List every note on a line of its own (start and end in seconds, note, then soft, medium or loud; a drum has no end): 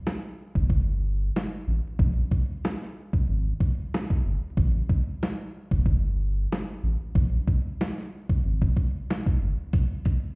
0.07 snare loud
0.07 snare medium
0.55 1.31 G1 medium
0.55 kick medium
0.70 kick medium
1.36 snare loud
1.36 snare medium
1.67 1.81 A1 medium
1.99 2.24 A#1 loud
1.99 kick loud
2.31 kick medium
2.65 snare loud
2.65 snare medium
2.82 snare soft
3.13 kick medium
3.28 3.53 G#1 medium
3.60 kick medium
3.94 snare loud
3.94 snare medium
4.10 kick medium
4.25 4.39 G1 loud
4.57 4.82 A1 loud
4.57 kick loud
4.89 kick medium
5.23 snare loud
5.23 snare medium
5.71 6.47 G1 medium
5.71 kick medium
5.86 kick medium
6.52 snare loud
6.52 snare medium
6.83 6.97 A1 medium
7.15 7.40 A#1 loud
7.15 kick loud
7.48 kick medium
7.81 snare loud
7.81 snare medium
7.98 snare soft
8.29 kick medium
8.44 8.69 G#1 medium
8.62 kick medium
8.77 kick medium
9.10 snare loud
9.10 snare medium
9.26 kick medium
9.41 9.55 G1 medium
9.73 kick loud
9.73 closed hi-hat loud
10.05 kick medium
10.05 closed hi-hat medium